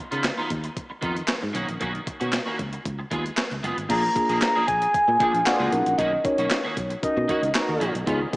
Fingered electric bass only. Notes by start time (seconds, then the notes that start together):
0.12 C#3
0.51 D#2
1.03 F2
1.43 G#2
1.55 B1
1.69 A#1
1.81 B1
2.21 B2
2.59 C#2
2.86 C#2
3.12 D#2
3.52 C#2
3.64 F#1
3.78 G#1
3.90 A#1
4.30 A#1
4.68 A#1
4.94 muted fingered electric bass stroke
5.08 A#2
5.34 A#1
5.60 C#2
5.73 B1
5.86 A#1
5.99 B1
6.38 B1
6.77 B1
7.03 muted fingered electric bass stroke
7.17 B2
7.43 C#2
7.69 D#2
7.81 A#1
7.95 B1
8.07 C#2